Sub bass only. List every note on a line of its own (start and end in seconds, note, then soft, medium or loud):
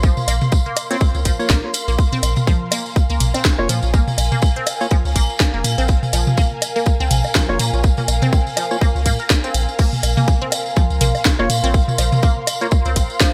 0.00 0.13 A#1 loud
0.28 0.39 A#1 loud
1.15 1.24 C#2 loud
1.25 1.37 A#1 loud
1.50 1.61 A#1 loud
1.88 1.97 A#1 medium
2.23 2.35 A#1 loud
3.10 3.19 C#2 medium
3.20 3.32 A#1 loud
3.59 3.68 F1 medium
3.69 3.81 A#2 loud
3.83 4.03 A#1 loud
4.18 4.30 A#1 loud
5.05 5.14 C#2 medium
5.16 5.27 A#1 medium
5.54 5.63 F1 medium
5.64 5.76 A#2 loud
5.78 5.98 A#1 loud
6.13 6.25 A#1 loud
7.00 7.09 C#2 medium
7.11 7.22 A#1 loud
7.49 7.58 F1 medium
7.59 7.71 A#2 loud
7.73 7.93 A#1 loud
8.08 8.20 A#1 loud
8.95 9.07 C#2 loud
9.06 9.17 A#2 loud
9.55 9.66 A#1 loud
10.03 10.15 A#1 loud
10.90 10.99 C#2 loud
11.01 11.13 A#1 loud
11.39 11.48 F1 medium
11.50 11.61 A#2 loud
11.64 11.83 A#1 loud
11.98 12.10 A#1 loud
12.86 12.94 C#2 loud
12.96 13.08 A#1 loud